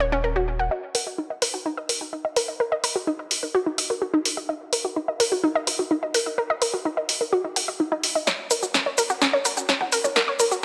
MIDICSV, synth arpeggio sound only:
0, 0, Header, 1, 2, 480
1, 0, Start_track
1, 0, Key_signature, -6, "minor"
1, 0, Tempo, 472441
1, 723, Time_signature, 4, 2, 24, 8
1, 10817, End_track
2, 0, Start_track
2, 0, Title_t, "Synth arpeggio sound"
2, 0, Program_c, 0, 84
2, 4, Note_on_c, 0, 73, 99
2, 71, Note_off_c, 0, 73, 0
2, 125, Note_on_c, 0, 61, 100
2, 225, Note_off_c, 0, 61, 0
2, 243, Note_on_c, 0, 70, 80
2, 311, Note_off_c, 0, 70, 0
2, 364, Note_on_c, 0, 66, 75
2, 431, Note_off_c, 0, 66, 0
2, 604, Note_on_c, 0, 78, 74
2, 705, Note_off_c, 0, 78, 0
2, 723, Note_on_c, 0, 75, 83
2, 791, Note_off_c, 0, 75, 0
2, 963, Note_on_c, 0, 70, 76
2, 1031, Note_off_c, 0, 70, 0
2, 1083, Note_on_c, 0, 66, 76
2, 1124, Note_off_c, 0, 66, 0
2, 1203, Note_on_c, 0, 63, 80
2, 1271, Note_off_c, 0, 63, 0
2, 1324, Note_on_c, 0, 75, 72
2, 1425, Note_off_c, 0, 75, 0
2, 1443, Note_on_c, 0, 70, 100
2, 1511, Note_off_c, 0, 70, 0
2, 1563, Note_on_c, 0, 66, 98
2, 1604, Note_off_c, 0, 66, 0
2, 1683, Note_on_c, 0, 63, 103
2, 1751, Note_off_c, 0, 63, 0
2, 1803, Note_on_c, 0, 75, 99
2, 1871, Note_off_c, 0, 75, 0
2, 1922, Note_on_c, 0, 70, 74
2, 2025, Note_off_c, 0, 70, 0
2, 2042, Note_on_c, 0, 66, 77
2, 2083, Note_off_c, 0, 66, 0
2, 2163, Note_on_c, 0, 63, 81
2, 2231, Note_off_c, 0, 63, 0
2, 2283, Note_on_c, 0, 75, 77
2, 2385, Note_off_c, 0, 75, 0
2, 2403, Note_on_c, 0, 70, 100
2, 2471, Note_off_c, 0, 70, 0
2, 2523, Note_on_c, 0, 75, 77
2, 2591, Note_off_c, 0, 75, 0
2, 2642, Note_on_c, 0, 70, 99
2, 2683, Note_off_c, 0, 70, 0
2, 2763, Note_on_c, 0, 75, 100
2, 2830, Note_off_c, 0, 75, 0
2, 2883, Note_on_c, 0, 70, 97
2, 2951, Note_off_c, 0, 70, 0
2, 3003, Note_on_c, 0, 66, 78
2, 3044, Note_off_c, 0, 66, 0
2, 3122, Note_on_c, 0, 63, 84
2, 3225, Note_off_c, 0, 63, 0
2, 3243, Note_on_c, 0, 75, 70
2, 3311, Note_off_c, 0, 75, 0
2, 3484, Note_on_c, 0, 70, 75
2, 3524, Note_off_c, 0, 70, 0
2, 3602, Note_on_c, 0, 66, 104
2, 3671, Note_off_c, 0, 66, 0
2, 3723, Note_on_c, 0, 63, 74
2, 3764, Note_off_c, 0, 63, 0
2, 3842, Note_on_c, 0, 75, 78
2, 3883, Note_off_c, 0, 75, 0
2, 3962, Note_on_c, 0, 70, 77
2, 4030, Note_off_c, 0, 70, 0
2, 4081, Note_on_c, 0, 66, 83
2, 4184, Note_off_c, 0, 66, 0
2, 4202, Note_on_c, 0, 63, 102
2, 4243, Note_off_c, 0, 63, 0
2, 4442, Note_on_c, 0, 75, 74
2, 4483, Note_off_c, 0, 75, 0
2, 4562, Note_on_c, 0, 75, 79
2, 4631, Note_off_c, 0, 75, 0
2, 4802, Note_on_c, 0, 70, 76
2, 4871, Note_off_c, 0, 70, 0
2, 4923, Note_on_c, 0, 66, 80
2, 4964, Note_off_c, 0, 66, 0
2, 5043, Note_on_c, 0, 63, 83
2, 5111, Note_off_c, 0, 63, 0
2, 5164, Note_on_c, 0, 75, 71
2, 5265, Note_off_c, 0, 75, 0
2, 5282, Note_on_c, 0, 70, 102
2, 5351, Note_off_c, 0, 70, 0
2, 5404, Note_on_c, 0, 66, 100
2, 5444, Note_off_c, 0, 66, 0
2, 5523, Note_on_c, 0, 63, 105
2, 5591, Note_off_c, 0, 63, 0
2, 5643, Note_on_c, 0, 75, 103
2, 5711, Note_off_c, 0, 75, 0
2, 5763, Note_on_c, 0, 70, 75
2, 5865, Note_off_c, 0, 70, 0
2, 5883, Note_on_c, 0, 66, 75
2, 5924, Note_off_c, 0, 66, 0
2, 6003, Note_on_c, 0, 63, 86
2, 6071, Note_off_c, 0, 63, 0
2, 6124, Note_on_c, 0, 75, 77
2, 6225, Note_off_c, 0, 75, 0
2, 6243, Note_on_c, 0, 70, 102
2, 6311, Note_off_c, 0, 70, 0
2, 6363, Note_on_c, 0, 75, 75
2, 6431, Note_off_c, 0, 75, 0
2, 6483, Note_on_c, 0, 70, 97
2, 6524, Note_off_c, 0, 70, 0
2, 6604, Note_on_c, 0, 75, 100
2, 6671, Note_off_c, 0, 75, 0
2, 6723, Note_on_c, 0, 70, 100
2, 6791, Note_off_c, 0, 70, 0
2, 6844, Note_on_c, 0, 66, 75
2, 6884, Note_off_c, 0, 66, 0
2, 6963, Note_on_c, 0, 63, 85
2, 7065, Note_off_c, 0, 63, 0
2, 7083, Note_on_c, 0, 75, 75
2, 7151, Note_off_c, 0, 75, 0
2, 7323, Note_on_c, 0, 70, 76
2, 7364, Note_off_c, 0, 70, 0
2, 7443, Note_on_c, 0, 66, 107
2, 7511, Note_off_c, 0, 66, 0
2, 7564, Note_on_c, 0, 63, 75
2, 7604, Note_off_c, 0, 63, 0
2, 7684, Note_on_c, 0, 78, 73
2, 7786, Note_off_c, 0, 78, 0
2, 7804, Note_on_c, 0, 75, 76
2, 7871, Note_off_c, 0, 75, 0
2, 7924, Note_on_c, 0, 63, 80
2, 8026, Note_off_c, 0, 63, 0
2, 8044, Note_on_c, 0, 63, 100
2, 8145, Note_off_c, 0, 63, 0
2, 8285, Note_on_c, 0, 75, 73
2, 8325, Note_off_c, 0, 75, 0
2, 8404, Note_on_c, 0, 73, 81
2, 8472, Note_off_c, 0, 73, 0
2, 8644, Note_on_c, 0, 70, 78
2, 8711, Note_off_c, 0, 70, 0
2, 8765, Note_on_c, 0, 66, 78
2, 8804, Note_off_c, 0, 66, 0
2, 8884, Note_on_c, 0, 61, 85
2, 8951, Note_off_c, 0, 61, 0
2, 9004, Note_on_c, 0, 73, 76
2, 9105, Note_off_c, 0, 73, 0
2, 9124, Note_on_c, 0, 70, 105
2, 9191, Note_off_c, 0, 70, 0
2, 9245, Note_on_c, 0, 66, 103
2, 9285, Note_off_c, 0, 66, 0
2, 9363, Note_on_c, 0, 61, 109
2, 9431, Note_off_c, 0, 61, 0
2, 9483, Note_on_c, 0, 73, 107
2, 9551, Note_off_c, 0, 73, 0
2, 9603, Note_on_c, 0, 70, 78
2, 9705, Note_off_c, 0, 70, 0
2, 9724, Note_on_c, 0, 66, 76
2, 9764, Note_off_c, 0, 66, 0
2, 9843, Note_on_c, 0, 61, 80
2, 9911, Note_off_c, 0, 61, 0
2, 9964, Note_on_c, 0, 78, 75
2, 10004, Note_off_c, 0, 78, 0
2, 10083, Note_on_c, 0, 70, 102
2, 10151, Note_off_c, 0, 70, 0
2, 10204, Note_on_c, 0, 73, 74
2, 10271, Note_off_c, 0, 73, 0
2, 10322, Note_on_c, 0, 70, 101
2, 10364, Note_off_c, 0, 70, 0
2, 10443, Note_on_c, 0, 73, 97
2, 10511, Note_off_c, 0, 73, 0
2, 10563, Note_on_c, 0, 70, 98
2, 10631, Note_off_c, 0, 70, 0
2, 10684, Note_on_c, 0, 66, 79
2, 10724, Note_off_c, 0, 66, 0
2, 10817, End_track
0, 0, End_of_file